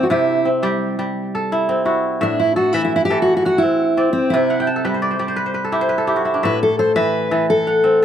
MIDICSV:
0, 0, Header, 1, 3, 480
1, 0, Start_track
1, 0, Tempo, 351700
1, 141, Time_signature, 12, 3, 24, 8
1, 10985, End_track
2, 0, Start_track
2, 0, Title_t, "Kora"
2, 0, Program_c, 0, 46
2, 0, Note_on_c, 0, 45, 83
2, 0, Note_on_c, 0, 52, 75
2, 0, Note_on_c, 0, 60, 77
2, 0, Note_on_c, 0, 69, 73
2, 0, Note_on_c, 0, 74, 64
2, 0, Note_on_c, 0, 78, 62
2, 137, Note_on_c, 0, 48, 78
2, 141, Note_on_c, 0, 67, 69
2, 209, Note_off_c, 0, 45, 0
2, 209, Note_off_c, 0, 52, 0
2, 223, Note_off_c, 0, 78, 0
2, 613, Note_off_c, 0, 60, 0
2, 619, Note_on_c, 0, 60, 62
2, 848, Note_off_c, 0, 67, 0
2, 853, Note_on_c, 0, 67, 68
2, 859, Note_on_c, 0, 55, 89
2, 1180, Note_off_c, 0, 74, 0
2, 1227, Note_off_c, 0, 69, 0
2, 1332, Note_off_c, 0, 55, 0
2, 1349, Note_on_c, 0, 55, 79
2, 1839, Note_on_c, 0, 69, 63
2, 2076, Note_on_c, 0, 64, 80
2, 2299, Note_off_c, 0, 60, 0
2, 2304, Note_on_c, 0, 60, 67
2, 2525, Note_off_c, 0, 64, 0
2, 2530, Note_on_c, 0, 64, 65
2, 2535, Note_on_c, 0, 66, 66
2, 2616, Note_off_c, 0, 67, 0
2, 3014, Note_on_c, 0, 45, 80
2, 3018, Note_on_c, 0, 76, 67
2, 3084, Note_off_c, 0, 48, 0
2, 3084, Note_off_c, 0, 55, 0
2, 3489, Note_off_c, 0, 69, 0
2, 3494, Note_on_c, 0, 69, 66
2, 3736, Note_off_c, 0, 76, 0
2, 3740, Note_on_c, 0, 52, 79
2, 3741, Note_on_c, 0, 76, 70
2, 4219, Note_off_c, 0, 52, 0
2, 4232, Note_off_c, 0, 69, 0
2, 4235, Note_on_c, 0, 52, 70
2, 4237, Note_on_c, 0, 69, 62
2, 4530, Note_off_c, 0, 66, 0
2, 4669, Note_off_c, 0, 64, 0
2, 4712, Note_on_c, 0, 78, 63
2, 4761, Note_off_c, 0, 60, 0
2, 4943, Note_on_c, 0, 60, 64
2, 5152, Note_off_c, 0, 76, 0
2, 5418, Note_off_c, 0, 60, 0
2, 5423, Note_on_c, 0, 60, 77
2, 5427, Note_on_c, 0, 74, 61
2, 5917, Note_on_c, 0, 48, 90
2, 5962, Note_off_c, 0, 45, 0
2, 5962, Note_off_c, 0, 52, 0
2, 6028, Note_off_c, 0, 78, 0
2, 6036, Note_off_c, 0, 69, 0
2, 6143, Note_on_c, 0, 78, 66
2, 6277, Note_on_c, 0, 79, 71
2, 6374, Note_on_c, 0, 81, 69
2, 6496, Note_on_c, 0, 69, 68
2, 6614, Note_on_c, 0, 55, 75
2, 6618, Note_on_c, 0, 71, 67
2, 6696, Note_off_c, 0, 78, 0
2, 6700, Note_off_c, 0, 60, 0
2, 6746, Note_on_c, 0, 72, 58
2, 6845, Note_off_c, 0, 74, 0
2, 6851, Note_on_c, 0, 74, 70
2, 6965, Note_off_c, 0, 72, 0
2, 6970, Note_on_c, 0, 72, 59
2, 7052, Note_off_c, 0, 71, 0
2, 7073, Note_off_c, 0, 55, 0
2, 7081, Note_off_c, 0, 74, 0
2, 7086, Note_on_c, 0, 74, 63
2, 7089, Note_on_c, 0, 55, 63
2, 7202, Note_off_c, 0, 72, 0
2, 7207, Note_on_c, 0, 72, 64
2, 7320, Note_on_c, 0, 71, 75
2, 7445, Note_off_c, 0, 72, 0
2, 7451, Note_on_c, 0, 72, 65
2, 7549, Note_off_c, 0, 79, 0
2, 7558, Note_off_c, 0, 71, 0
2, 7560, Note_off_c, 0, 81, 0
2, 7564, Note_on_c, 0, 71, 62
2, 7698, Note_off_c, 0, 69, 0
2, 7703, Note_on_c, 0, 69, 61
2, 7810, Note_on_c, 0, 64, 73
2, 7813, Note_on_c, 0, 67, 64
2, 7926, Note_off_c, 0, 72, 0
2, 7931, Note_on_c, 0, 72, 71
2, 8013, Note_off_c, 0, 71, 0
2, 8038, Note_on_c, 0, 71, 63
2, 8155, Note_off_c, 0, 69, 0
2, 8160, Note_on_c, 0, 69, 63
2, 8282, Note_off_c, 0, 64, 0
2, 8286, Note_off_c, 0, 67, 0
2, 8288, Note_on_c, 0, 64, 69
2, 8292, Note_on_c, 0, 67, 67
2, 8409, Note_on_c, 0, 66, 62
2, 8526, Note_off_c, 0, 64, 0
2, 8531, Note_on_c, 0, 64, 55
2, 8598, Note_off_c, 0, 74, 0
2, 8653, Note_on_c, 0, 62, 60
2, 8776, Note_on_c, 0, 76, 69
2, 8778, Note_on_c, 0, 45, 76
2, 8843, Note_off_c, 0, 48, 0
2, 8843, Note_off_c, 0, 55, 0
2, 9261, Note_off_c, 0, 69, 0
2, 9266, Note_on_c, 0, 69, 66
2, 9491, Note_off_c, 0, 76, 0
2, 9496, Note_on_c, 0, 76, 65
2, 9498, Note_on_c, 0, 52, 82
2, 9552, Note_off_c, 0, 72, 0
2, 9716, Note_off_c, 0, 71, 0
2, 9966, Note_off_c, 0, 52, 0
2, 9975, Note_off_c, 0, 69, 0
2, 9981, Note_on_c, 0, 52, 78
2, 9981, Note_on_c, 0, 69, 55
2, 10219, Note_off_c, 0, 67, 0
2, 10404, Note_off_c, 0, 66, 0
2, 10469, Note_on_c, 0, 78, 66
2, 10670, Note_off_c, 0, 64, 0
2, 10696, Note_on_c, 0, 60, 66
2, 10907, Note_off_c, 0, 76, 0
2, 10945, Note_off_c, 0, 62, 0
2, 10946, Note_off_c, 0, 69, 0
2, 10985, Note_off_c, 0, 45, 0
2, 10985, Note_off_c, 0, 52, 0
2, 10985, Note_off_c, 0, 60, 0
2, 10985, Note_off_c, 0, 78, 0
2, 10985, End_track
3, 0, Start_track
3, 0, Title_t, "Steel-string acoustic guitar"
3, 0, Program_c, 1, 25
3, 43, Note_on_c, 1, 66, 57
3, 139, Note_off_c, 1, 66, 0
3, 151, Note_on_c, 1, 64, 80
3, 647, Note_off_c, 1, 64, 0
3, 3043, Note_on_c, 1, 62, 85
3, 3253, Note_off_c, 1, 62, 0
3, 3268, Note_on_c, 1, 64, 75
3, 3492, Note_off_c, 1, 64, 0
3, 3498, Note_on_c, 1, 66, 70
3, 3720, Note_off_c, 1, 66, 0
3, 3720, Note_on_c, 1, 64, 97
3, 3868, Note_off_c, 1, 64, 0
3, 3884, Note_on_c, 1, 64, 71
3, 4021, Note_off_c, 1, 64, 0
3, 4037, Note_on_c, 1, 64, 88
3, 4158, Note_off_c, 1, 64, 0
3, 4164, Note_on_c, 1, 67, 92
3, 4389, Note_off_c, 1, 67, 0
3, 4395, Note_on_c, 1, 66, 93
3, 4578, Note_off_c, 1, 66, 0
3, 4595, Note_on_c, 1, 66, 78
3, 4706, Note_off_c, 1, 66, 0
3, 4723, Note_on_c, 1, 66, 94
3, 4887, Note_on_c, 1, 64, 83
3, 4914, Note_off_c, 1, 66, 0
3, 5628, Note_off_c, 1, 64, 0
3, 5633, Note_on_c, 1, 60, 78
3, 5870, Note_on_c, 1, 64, 85
3, 5891, Note_off_c, 1, 60, 0
3, 6383, Note_off_c, 1, 64, 0
3, 8805, Note_on_c, 1, 71, 84
3, 9015, Note_off_c, 1, 71, 0
3, 9045, Note_on_c, 1, 69, 88
3, 9255, Note_off_c, 1, 69, 0
3, 9269, Note_on_c, 1, 72, 84
3, 9486, Note_off_c, 1, 72, 0
3, 9495, Note_on_c, 1, 71, 105
3, 10229, Note_off_c, 1, 71, 0
3, 10234, Note_on_c, 1, 69, 89
3, 10963, Note_off_c, 1, 69, 0
3, 10985, End_track
0, 0, End_of_file